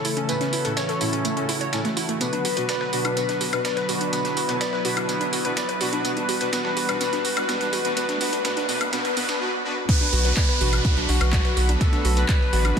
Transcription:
Already playing: C#3 E3 A3 E4 A4
0.05 E4, open hi-hat, tambourine
0.17 C#4, closed hi-hat
0.29 A2 A3 C#4 E4 F#4 A4 B4, closed hi-hat, tambourine
0.41 C#4, snare, closed hi-hat
0.53 E4, open hi-hat, tambourine
0.65 A2 C#4 E4 A4, closed hi-hat
0.77 C#5, snare, closed hi-hat, tambourine
0.89 A4, snare, closed hi-hat
1.01 A2 C#4 E4 A4, open hi-hat, tambourine
1.13 C#4, closed hi-hat
1.25 A3, closed hi-hat, tambourine
1.37 A2 C#4 E4 A4, closed hi-hat
1.49 E4, open hi-hat, tambourine
1.61 C#5, closed hi-hat
1.73 A2 C#4 E4 A4, snare, closed hi-hat, tambourine
1.85 A3, snare, closed hi-hat
1.97 E4, snare, open hi-hat, tambourine
2.09 A3, closed hi-hat
2.21 B2 D3 F#3 B3 D4 F#4 B4, closed hi-hat, tambourine, riser
2.33 D4, closed hi-hat
2.45 F#4, open hi-hat, tambourine
2.57 B2 D4 F#4 B4, closed hi-hat
2.69 B4 D5, snare, closed hi-hat, tambourine
2.81 B4, snare
2.93 B2 D4 F#4 B4, open hi-hat, tambourine
3.05 D4, closed hi-hat, high woodblock
3.17 B2 B3 D4 F#4 B4, closed hi-hat, tambourine
3.29 D4, snare, closed hi-hat
3.41 F#4, open hi-hat, tambourine
3.53 B2 D4 F#4 B4, snare, closed hi-hat, high woodblock
3.65 B4 D5, snare, closed hi-hat, tambourine
3.77 B4, snare, closed hi-hat
3.89 B2 D4 F#4 B4, open hi-hat, tambourine
4.01 D4, closed hi-hat
4.13 B2 B3 D4 E4 F#4 B4, closed hi-hat, tambourine
4.25 D4, snare, closed hi-hat
4.37 F#4, open hi-hat, tambourine
4.49 B2 D4 F#4 B4, closed hi-hat
4.61 B4 D5, snare, closed hi-hat, tambourine
4.73 B4, snare
4.85 B2 D4 F#4 B4, open hi-hat, tambourine
4.97 D4, closed hi-hat, high woodblock
5.09 B2 B3 D4 F#4 B4, closed hi-hat, tambourine
5.21 D4, closed hi-hat
5.33 F#4, open hi-hat, tambourine
5.45 B2 D4 F#4 B4, closed hi-hat
5.57 B4 D5, snare, closed hi-hat, tambourine
5.69 B4, closed hi-hat
5.81 B2 D4 F#4 B4, snare, open hi-hat, tambourine
5.93 D4, closed hi-hat
6.05 B2 E3 G3 B3 D4 F#4 B4, closed hi-hat, tambourine
6.17 D4, closed hi-hat
6.29 F#4, open hi-hat, tambourine
6.41 B2 D4 F#4 B4, closed hi-hat
6.53 B2 B3 D4 F#4 B4, snare, closed hi-hat, tambourine
6.65 D4, snare
6.77 F#4, open hi-hat, tambourine
6.89 B2 D4 F#4 B4, closed hi-hat, high woodblock
7.01 B2 B3 D4 F#4 B4, closed hi-hat, tambourine
7.13 D4, snare, closed hi-hat
7.25 F#4, open hi-hat, tambourine
7.37 B2 D4 F#4 B4, snare, closed hi-hat, high woodblock
7.49 B2 B3 D4 F#4 B4, snare, closed hi-hat, tambourine
7.61 D4, snare, closed hi-hat
7.73 F#4, open hi-hat, tambourine
7.85 B2 D4 F#4 B4, closed hi-hat
7.97 B2 B3 D4 F#4 B4, closed hi-hat, tambourine, noise sweep
8.09 D4, snare, closed hi-hat
8.21 B2 B3 D4 F#4 B4, open hi-hat, tambourine
8.33 D4, closed hi-hat
8.45 B2 B3 D4 F#4 B4, snare, closed hi-hat, tambourine
8.57 D4, snare, closed hi-hat
8.69 B2 B3 D4 F#4 B4, open hi-hat, tambourine
8.81 D4, closed hi-hat, high woodblock
8.93 B2 B3 D4 F#4 B4, snare, closed hi-hat, tambourine
9.05 D4, snare, closed hi-hat
9.17 B2 B3 D4 F#4 B4, open hi-hat, tambourine
9.29 D4, snare, closed hi-hat, tambourine
9.41 B2 D4 F#4 B4
9.65 B2 D4 F#4 B4
9.89 B2 D3 F#3 B3 D4 F#4 B4 B5, kick, closed hi-hat, crash, tambourine, downlifter
10.01 D4, closed hi-hat
10.13 B1 F#4, open hi-hat, tambourine
10.25 B2 D4 F#4 B4, closed hi-hat
10.37 B4 D5, kick, snare, clap, closed hi-hat, tambourine
10.49 B4, snare
10.61 A1 B2 D4 F#4 B4, open hi-hat, tambourine
10.73 D4, closed hi-hat, high woodblock
10.85 B3, kick, closed hi-hat, tambourine
10.97 B1 B2 D4 F#4 B4, snare, closed hi-hat
11.09 B1 D4 F#4, open hi-hat, tambourine
11.21 B1 B4, snare, closed hi-hat, high woodblock
11.33 B2 D4 F#4 B4 D5, kick, snare, clap, closed hi-hat, tambourine
11.45 B4, snare, closed hi-hat
11.57 B1 F#4, open hi-hat, tambourine
11.69 D4, closed hi-hat
11.81 B2 B3 D4 F#4 A4 B4, kick, closed hi-hat, tambourine
11.93 D4, snare, closed hi-hat
12.05 B1 F#4, open hi-hat, tambourine
12.17 B2 D4 F#4 B4, closed hi-hat
12.29 B4 D5, kick, snare, clap, closed hi-hat, tambourine
12.41 B4, snare
12.53 A1 B2 D4 F#4 B4, open hi-hat, tambourine
12.65 D4, closed hi-hat, high woodblock

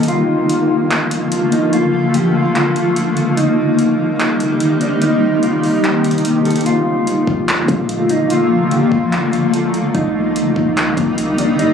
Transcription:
Already playing: A#3
0.03 closed hi-hat
0.08 D3 F3 A3 F4, closed hi-hat
0.49 closed hi-hat
0.91 clap, closed hi-hat
1.11 closed hi-hat
1.32 closed hi-hat
1.52 D#4, closed hi-hat
1.73 F4, closed hi-hat
2.14 G4, closed hi-hat
2.35 F4
2.55 F4, clap, closed hi-hat
2.76 closed hi-hat
2.96 closed hi-hat
3.17 closed hi-hat
3.37 C3 D#3 G3 D#4, closed hi-hat
3.79 closed hi-hat
4.20 clap, closed hi-hat
4.40 closed hi-hat
4.60 closed hi-hat
4.81 D4, closed hi-hat
5.02 D#4, closed hi-hat
5.43 F4, closed hi-hat
5.63 D#4, open hi-hat
5.84 G4, clap, closed hi-hat
6.04 closed hi-hat
6.11 closed hi-hat
6.18 closed hi-hat
6.25 closed hi-hat
6.45 A4, closed hi-hat
6.51 closed hi-hat
6.56 closed hi-hat
6.61 closed hi-hat
6.66 D3 F3 A3 A#3 F4, closed hi-hat
7.07 closed hi-hat
7.27 A#1, kick
7.48 clap, closed hi-hat
7.68 A#2, kick, closed hi-hat
7.89 closed hi-hat
8.09 D#4, closed hi-hat
8.30 F4, closed hi-hat
8.71 G4, closed hi-hat
8.92 A#1 F4, kick
9.12 F4, clap, closed hi-hat
9.33 closed hi-hat
9.54 closed hi-hat
9.74 closed hi-hat
9.94 C2 C3 D#3 G3 A#3 D#4, kick, closed hi-hat
10.36 closed hi-hat
10.56 C2, kick
10.77 clap, closed hi-hat
10.97 C2, kick, closed hi-hat
11.18 closed hi-hat
11.38 D4, closed hi-hat
11.59 G2 D#4, closed hi-hat

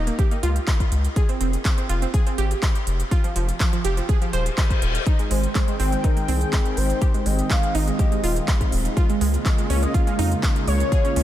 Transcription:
Already playing: D#1
0.07 A#3, closed hi-hat
0.19 G4, kick, closed hi-hat
0.31 A#3, closed hi-hat
0.43 C#2 F4, closed hi-hat
0.56 closed hi-hat
0.67 kick, clap, closed hi-hat
0.80 kick, closed hi-hat
0.92 C#2, closed hi-hat
1.05 closed hi-hat
1.16 G#4, kick, closed hi-hat
1.29 C4, closed hi-hat
1.41 F1 C4, closed hi-hat
1.53 closed hi-hat
1.65 C4, kick, clap, closed hi-hat
1.78 C4, closed hi-hat
1.89 F1 F4, closed hi-hat
2.02 C4, closed hi-hat
2.14 G#4, kick, closed hi-hat
2.27 C4, closed hi-hat
2.38 G#1 G4, closed hi-hat
2.51 closed hi-hat
2.63 kick, clap, closed hi-hat
2.75 closed hi-hat
2.87 F1, closed hi-hat
3.00 closed hi-hat
3.11 F4, kick, closed hi-hat
3.24 F3, closed hi-hat
3.36 F1 F3, closed hi-hat
3.49 closed hi-hat
3.60 F3, kick, clap, closed hi-hat
3.73 F3, closed hi-hat
3.85 F1 G4, closed hi-hat
3.97 F3, closed hi-hat
4.09 G#4, kick, closed hi-hat, reverse cymbal
4.22 F3, closed hi-hat
4.33 D#1 C5, closed hi-hat
4.46 closed hi-hat
4.58 kick, clap, closed hi-hat
4.70 kick, closed hi-hat
4.82 D#1, closed hi-hat
4.95 closed hi-hat
5.06 D#3 G#3 C4 D#4 G5, kick, closed hi-hat
5.19 G#3, closed hi-hat
5.31 G#1 G#3 C5, open hi-hat
5.44 closed hi-hat
5.55 G#3, kick, clap, closed hi-hat
5.68 G#3, closed hi-hat
5.80 G#1 C4, open hi-hat
5.92 G#3, closed hi-hat
6.04 D#4 A#4, kick, closed hi-hat
6.17 G#3, closed hi-hat
6.28 C2 C4 G#4, open hi-hat
6.41 closed hi-hat
6.53 kick, clap, closed hi-hat
6.65 closed hi-hat
6.77 G#1 C5, open hi-hat
6.90 closed hi-hat
7.02 G4, kick, closed hi-hat
7.14 G#3, closed hi-hat
7.26 G#1 G#3 D#5, open hi-hat
7.39 closed hi-hat
7.50 G#3 F5, kick, clap, closed hi-hat
7.63 G#3, closed hi-hat
7.75 G#1 D#4 D#5, open hi-hat
7.88 G#3, closed hi-hat
7.99 G4, kick, closed hi-hat
8.12 G#3, closed hi-hat
8.24 D#1 F4, open hi-hat
8.36 closed hi-hat
8.48 kick, clap, closed hi-hat
8.61 kick, closed hi-hat
8.72 D#1, open hi-hat
8.85 closed hi-hat
8.97 C#3 A#3 F4, kick, closed hi-hat
9.10 G#3, closed hi-hat
9.21 C#2 G#3, open hi-hat
9.34 closed hi-hat
9.46 G#3, kick, clap, closed hi-hat
9.58 G#3, closed hi-hat
9.70 C#2 C#4 C#5, open hi-hat
9.82 G#3 D#5, closed hi-hat
9.94 F4 F5, kick, closed hi-hat
10.07 G#3, closed hi-hat
10.19 F2 D#4, open hi-hat
10.32 closed hi-hat
10.43 kick, clap, closed hi-hat
10.56 closed hi-hat
10.67 C#2 C#5, open hi-hat
10.80 closed hi-hat
10.92 G#4, kick, closed hi-hat
11.05 C#4, closed hi-hat
11.16 C#2 C#4, open hi-hat

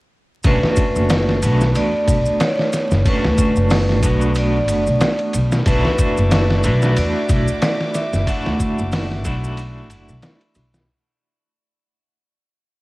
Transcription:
0.44 B1 A3 C#4 D4 F#4 B4, kick, ride, maracas
0.63 snare
0.76 kick, ride, maracas
0.96 F#1, maracas
1.09 snare, ride, maracas
1.29 snare
1.42 B1 A3 B3 D4 F#4, ride, maracas
1.61 snare, maracas
1.75 E2 D5, ride, maracas
2.08 B1, kick, ride, maracas
2.26 maracas
2.40 C#5, snare, ride, maracas
2.49 D5
2.58 C#5, snare
2.73 snare, ride, maracas
2.91 F#1, snare, maracas
3.05 A3 C#4 D4 F#4 B4, kick, ride, maracas
3.24 D2, snare
3.38 kick, ride, maracas
3.56 F#1, maracas
3.70 snare, open hi-hat, maracas
3.89 snare
4.03 B1 A3 B3 D4 F#4, kick, ride, maracas
4.21 maracas
4.35 D5, ride, maracas
4.68 F#1, ride, maracas
4.87 B1, maracas
5.01 snare, ride, maracas
5.19 ride
5.33 B1, ride, maracas
5.52 snare, maracas
5.66 B1 A3 D4 E4 F#4 B4 E5 D6, kick, ride, maracas
5.85 snare
5.98 kick, ride, maracas
6.17 F#1, maracas
6.31 snare, ride, maracas
6.50 snare
6.64 B1 A3 D4 E4 F#4, ride, maracas
6.82 snare, maracas
6.96 E2 D5, ride, maracas
7.29 B1, kick, ride, maracas
7.48 maracas
7.62 D5, snare, ride, maracas
7.81 snare
7.94 E5, snare, ride, maracas
8.13 F#1, snare, maracas
8.27 A3 D4 E4 F#4 F#5, kick, ride, maracas
8.46 D2, snare
8.60 kick, ride, maracas
8.78 F#1, maracas
8.92 snare, open hi-hat, maracas
9.11 snare
9.24 B1 A3 D4 E4 F#4, kick, ride, maracas
9.44 maracas
9.57 ride, maracas
9.90 F#1, ride, maracas
10.09 B1, maracas
10.23 snare, ride, maracas
10.41 ride
10.55 B1, ride, maracas
10.74 snare, maracas

